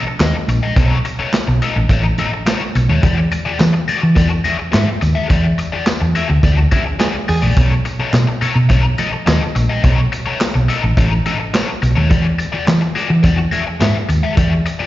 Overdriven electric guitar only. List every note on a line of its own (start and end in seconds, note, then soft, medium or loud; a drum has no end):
0.07 muted overdriven electric guitar stroke medium
0.21 0.34 D#4 medium
0.21 0.35 A4 medium
0.21 0.35 D#5 loud
0.49 muted overdriven electric guitar stroke soft
0.63 0.74 D#4 medium
0.63 0.74 A4 medium
0.63 0.74 D#5 medium
0.76 0.96 D#4 medium
0.76 0.96 A4 medium
0.76 0.97 C#5 loud
1.05 muted overdriven electric guitar stroke soft
1.19 1.31 D#4 medium
1.19 1.30 A4 medium
1.19 1.30 C#5 medium
1.33 muted overdriven electric guitar stroke soft
1.47 muted overdriven electric guitar stroke soft
1.62 1.76 D#4 medium
1.62 1.76 A4 medium
1.62 1.77 D#5 medium
1.77 muted overdriven electric guitar stroke soft
1.91 2.05 D#4 medium
1.91 2.04 A4 loud
1.91 2.03 C#5 loud
2.04 muted overdriven electric guitar stroke soft
2.19 2.30 D#4 medium
2.19 2.30 A4 medium
2.19 2.30 D#5 medium
2.33 muted overdriven electric guitar stroke soft
2.46 2.61 D#4 loud
2.46 2.61 A4 loud
2.46 2.61 C#5 loud
2.76 muted overdriven electric guitar stroke soft
2.89 3.01 D#4 soft
2.89 3.01 A4 medium
2.89 3.00 C#5 medium
3.03 3.17 F#4 loud
3.03 3.18 G#4 loud
3.03 3.18 D5 loud
3.32 muted overdriven electric guitar stroke soft
3.45 3.57 F#4 medium
3.45 3.57 G#4 medium
3.45 3.57 D5 medium
3.60 muted overdriven electric guitar stroke medium
3.73 muted overdriven electric guitar stroke soft
3.88 4.02 F#4 medium
3.88 4.02 G#4 medium
3.88 4.01 D5 loud
4.02 muted overdriven electric guitar stroke soft
4.15 4.30 F#4 loud
4.15 4.30 G#4 loud
4.15 4.29 D5 loud
4.30 muted overdriven electric guitar stroke soft
4.44 4.56 F#4 medium
4.44 4.56 G#4 medium
4.44 4.56 E5 medium
4.59 muted overdriven electric guitar stroke soft
4.72 4.87 F#4 loud
4.72 4.87 G#4 loud
4.72 4.88 E5 loud
5.01 muted overdriven electric guitar stroke soft
5.15 5.27 F#4 medium
5.15 5.27 G#4 medium
5.15 5.27 E5 medium
5.29 5.44 F#4 medium
5.29 5.44 G#4 medium
5.29 5.45 D5 loud
5.58 muted overdriven electric guitar stroke soft
5.72 5.84 F#4 medium
5.72 5.84 G#4 medium
5.72 5.84 D5 medium
5.87 muted overdriven electric guitar stroke soft
6.00 muted overdriven electric guitar stroke soft
6.15 6.29 F#4 medium
6.15 6.29 G#4 medium
6.15 6.29 E5 medium
6.29 muted overdriven electric guitar stroke medium
6.44 6.58 F#4 loud
6.44 6.57 G#4 loud
6.44 6.57 D5 loud
6.58 muted overdriven electric guitar stroke soft
6.71 6.83 F#4 medium
6.71 6.83 G#4 medium
6.71 6.84 E5 medium
6.86 muted overdriven electric guitar stroke soft
6.99 7.14 F#4 medium
6.99 7.14 G#4 medium
6.99 7.15 D5 medium
7.28 muted overdriven electric guitar stroke soft
7.42 7.54 F#4 soft
7.42 7.54 G#4 medium
7.42 7.54 D5 medium
7.57 7.71 D#4 medium
7.57 7.71 A4 medium
7.57 7.72 C#5 loud
7.85 muted overdriven electric guitar stroke soft
8.00 8.11 D#4 medium
8.00 8.11 A4 medium
8.00 8.11 C#5 medium
8.14 muted overdriven electric guitar stroke soft
8.27 muted overdriven electric guitar stroke soft
8.41 8.56 D#4 medium
8.41 8.55 A4 medium
8.41 8.54 C#5 medium
8.55 muted overdriven electric guitar stroke soft
8.69 8.84 D#4 medium
8.69 8.84 A4 medium
8.69 8.83 C#5 loud
8.84 muted overdriven electric guitar stroke soft
8.98 9.10 D#4 medium
8.98 9.10 A4 medium
8.98 9.10 D#5 medium
9.13 muted overdriven electric guitar stroke medium
9.26 9.41 D#4 medium
9.26 9.42 A4 loud
9.26 9.42 D#5 loud
9.55 muted overdriven electric guitar stroke soft
9.69 9.81 D#4 medium
9.69 9.81 A4 medium
9.69 9.81 D#5 medium
9.83 9.98 D#4 medium
9.83 9.98 A4 loud
9.83 9.99 C#5 loud
10.12 muted overdriven electric guitar stroke soft
10.26 10.38 D#4 medium
10.26 10.38 A4 medium
10.26 10.37 C#5 medium
10.40 muted overdriven electric guitar stroke soft
10.54 muted overdriven electric guitar stroke soft
10.68 10.83 D#4 medium
10.68 10.83 A4 medium
10.68 10.83 D#5 medium
10.83 muted overdriven electric guitar stroke medium
10.97 11.12 D#4 medium
10.97 11.12 A4 loud
10.97 11.11 C#5 medium
11.12 muted overdriven electric guitar stroke soft
11.26 11.37 D#4 medium
11.26 11.37 A4 medium
11.26 11.37 D#5 medium
11.39 muted overdriven electric guitar stroke soft
11.54 11.68 D#4 medium
11.54 11.68 A4 loud
11.54 11.69 C#5 loud
11.82 muted overdriven electric guitar stroke soft
11.95 12.08 D#4 medium
11.95 12.08 A4 medium
11.95 12.07 C#5 medium
12.10 12.24 F#4 medium
12.10 12.25 G#4 loud
12.10 12.25 D5 loud
12.38 muted overdriven electric guitar stroke soft
12.52 12.64 F#4 medium
12.52 12.64 G#4 medium
12.52 12.64 D5 medium
12.67 muted overdriven electric guitar stroke soft
12.81 muted overdriven electric guitar stroke soft
12.95 13.10 F#4 loud
12.95 13.09 G#4 medium
12.95 13.08 D5 medium
13.09 muted overdriven electric guitar stroke medium
13.23 13.38 F#4 loud
13.23 13.37 G#4 medium
13.23 13.37 D5 loud
13.38 muted overdriven electric guitar stroke soft
13.51 13.63 F#4 medium
13.51 13.63 G#4 medium
13.51 13.64 E5 medium
13.67 muted overdriven electric guitar stroke medium
13.80 13.95 F#4 medium
13.80 13.95 G#4 medium
13.80 13.95 E5 loud
14.09 muted overdriven electric guitar stroke soft
14.23 14.35 F#4 soft
14.23 14.35 G#4 medium
14.23 14.34 E5 medium
14.37 14.51 F#4 loud
14.37 14.52 G#4 loud
14.37 14.52 D5 loud
14.66 muted overdriven electric guitar stroke soft
14.79 14.87 F#4 medium
14.79 14.87 G#4 medium
14.79 14.87 D5 medium